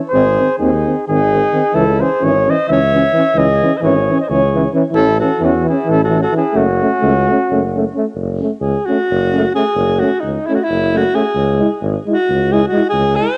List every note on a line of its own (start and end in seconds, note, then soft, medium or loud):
0.09 0.38 G#1 medium
0.09 0.23 C4 medium
0.09 0.56 G#4 medium
0.09 0.55 C5 loud
0.13 0.23 D#3 medium
0.38 0.47 D#3 soft
0.38 0.48 C4 soft
0.58 0.86 D#2 medium
0.58 0.69 D#3 medium
0.58 0.71 C4 medium
0.58 1.05 D#4 medium
0.58 1.03 G#4 medium
0.86 0.94 D#3 soft
0.86 0.95 C4 medium
1.08 1.45 G#1 medium
1.08 1.18 D#3 medium
1.08 1.20 C4 soft
1.08 1.77 D#4 medium
1.08 1.76 G#4 loud
1.32 1.40 D#3 medium
1.32 1.42 C4 soft
1.52 1.61 D#3 medium
1.52 1.62 C4 medium
1.74 2.00 C#2 medium
1.74 1.84 E3 medium
1.74 1.85 C#4 medium
1.74 2.04 E4 medium
1.74 2.02 A4 loud
1.99 2.08 E3 soft
1.99 2.09 C#4 medium
1.99 2.26 G#4 medium
1.99 2.26 C5 medium
2.21 2.48 G#1 medium
2.21 2.32 E3 medium
2.21 2.31 C#4 medium
2.21 2.52 C#5 loud
2.26 2.52 G#4 medium
2.47 2.56 E3 soft
2.47 2.55 C#4 medium
2.47 2.70 C5 medium
2.47 2.68 D#5 medium
2.69 3.06 C#2 medium
2.69 2.78 E3 medium
2.69 2.80 C#4 medium
2.69 3.40 C#5 medium
2.69 3.40 E5 loud
2.93 3.01 E3 medium
2.93 3.03 C#4 medium
3.13 3.22 E3 medium
3.13 3.25 C#4 medium
3.35 3.61 C#2 medium
3.35 3.45 E3 medium
3.35 3.46 C#4 medium
3.35 3.78 G#4 medium
3.35 3.75 D#5 loud
3.62 3.70 E3 medium
3.62 3.72 C#4 medium
3.75 3.83 C5 medium
3.75 3.85 D#5 medium
3.81 4.08 G#1 medium
3.81 3.92 E3 medium
3.81 3.95 C#4 medium
3.81 4.21 G#4 medium
3.81 4.20 C#5 medium
4.09 4.17 E3 medium
4.09 4.19 C#4 medium
4.21 4.30 C5 soft
4.21 4.31 D#5 medium
4.29 4.65 C#2 medium
4.29 4.39 E3 medium
4.29 4.41 C#4 medium
4.29 4.70 G#4 medium
4.29 4.71 C#5 medium
4.55 4.63 E3 medium
4.55 4.64 C#4 medium
4.74 4.82 E3 medium
4.74 4.82 C#4 medium
4.92 5.20 A1 medium
4.92 5.03 E3 medium
4.92 5.17 E4 medium
4.96 5.06 C#4 medium
4.96 5.19 A4 loud
5.19 5.29 E3 medium
5.19 5.30 C#4 medium
5.19 5.44 F#4 medium
5.19 5.46 A4 loud
5.40 5.67 E2 medium
5.40 5.51 E3 medium
5.40 5.53 C#4 medium
5.40 5.68 C#4 medium
5.45 5.68 F#4 medium
5.63 5.73 E3 medium
5.69 5.78 C#4 medium
5.69 5.91 E4 medium
5.69 5.92 G#4 medium
5.86 6.25 A1 medium
5.86 5.96 E3 medium
5.90 6.00 C#4 medium
5.90 6.03 E4 medium
5.90 6.03 A4 loud
6.04 6.18 F#4 medium
6.04 6.20 A4 medium
6.09 6.18 E3 medium
6.13 6.22 C#4 medium
6.21 6.33 F#4 medium
6.21 6.35 A4 medium
6.32 6.40 E3 medium
6.36 6.44 C#4 medium
6.36 6.59 E4 medium
6.36 6.58 G#4 medium
6.54 6.81 F#1 medium
6.54 6.65 A3 medium
6.54 6.65 C#4 medium
6.54 7.96 C#4 medium
6.54 7.95 F#4 loud
6.81 6.90 A3 medium
6.81 6.90 C#4 medium
7.01 7.28 C#2 medium
7.01 7.11 A3 medium
7.01 7.14 C#4 medium
7.28 7.37 A3 medium
7.28 7.38 C#4 medium
7.49 7.86 F#1 medium
7.49 7.60 A3 medium
7.49 7.60 C#4 medium
7.75 7.84 A3 medium
7.75 7.83 C#4 soft
7.93 8.05 A3 medium
7.93 8.02 C#4 medium
8.14 8.41 F#1 medium
8.40 8.50 A3 soft
8.40 8.49 C#4 soft
8.59 8.75 C#2 medium
8.59 8.87 G#4 medium
8.85 8.97 A3 soft
8.85 8.97 C#4 medium
8.85 9.53 F#4 medium
9.10 9.46 F#1 medium
9.33 9.44 A3 medium
9.33 9.41 C#4 medium
9.54 9.64 A3 medium
9.54 9.63 C#4 medium
9.54 10.01 G#4 medium
9.75 10.01 F#1 loud
9.99 10.09 A3 soft
9.99 10.10 C#4 medium
9.99 10.22 F#4 medium
10.20 10.37 C#2 medium
10.20 10.48 D#4 medium
10.46 10.57 C#4 medium
10.46 10.56 E4 medium
10.50 10.58 A3 medium
10.54 10.65 F#4 medium
10.63 10.98 E4 medium
10.69 11.05 F#1 medium
10.94 11.03 A3 medium
10.94 11.02 C#4 medium
10.94 11.16 F#4 medium
11.14 11.23 A3 medium
11.14 11.22 C#4 medium
11.14 11.82 G#4 medium
11.35 11.60 C#2 medium
11.59 11.68 G#3 medium
11.59 11.69 E4 medium
11.82 11.96 G#1 loud
12.06 12.15 G#3 soft
12.06 12.17 E4 medium
12.11 12.54 F#4 medium
12.29 12.65 C#2 medium
12.52 12.61 G#3 medium
12.52 12.61 E4 medium
12.52 12.67 G#4 medium
12.68 12.89 F#4 medium
12.72 12.80 G#3 medium
12.72 12.83 E4 medium
12.89 13.18 C#2 medium
12.89 13.18 G#4 medium
13.16 13.26 G#3 soft
13.16 13.28 E4 soft
13.16 13.37 C5 medium